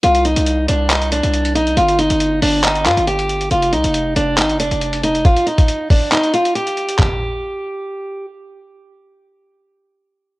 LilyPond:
<<
  \new Staff \with { instrumentName = "Steel-string acoustic guitar" } { \time 4/4 \key c \minor \tempo 4 = 138 f'8 ees'4 d'8 ees'8 d'4 ees'8 | f'8 ees'4 d'8 ees'8 f'8 g'4 | f'8 ees'4 d'8 ees'8 d'4 ees'8 | f'8 ees'4 d'8 ees'8 f'8 g'4 |
g'2. r4 | r1 | }
  \new Staff \with { instrumentName = "808-style bass" } { \clef bass \time 4/4 \key c \minor c,8. c,8. c,4~ c,16 c,8. b,,16 c,16 | g,,8. g,,8. g,,4 g,16 g,,4~ g,,16 | f,,8 c,16 f,,8. f,,8 aes,,16. f,,16. f,,4~ f,,16 | r1 |
r1 | r1 | }
  \new DrumStaff \with { instrumentName = "Drums" } \drummode { \time 4/4 hh16 hh16 hh16 hh16 hh8 hh8 <hc hh>16 hh16 hh16 hh16 hh16 hh16 hh16 hh16 | hh16 hh16 hh16 hh16 hh8 hho8 <hc hh>16 hh16 <hc hh>16 hh16 hh16 hh16 hh16 hh16 | hh16 hh16 hh16 hh16 hh8 hh8 <hc hh>16 hh16 hh16 hh16 hh16 hh16 hh16 hh16 | <hh bd>16 hh16 hh16 <hh bd>16 hh8 <hho bd>8 <hc hh>16 hh16 hh16 hh16 hh16 hh16 hh16 hh16 |
<hc bd tomfh>4 r4 r4 r4 | r4 r4 r4 r4 | }
>>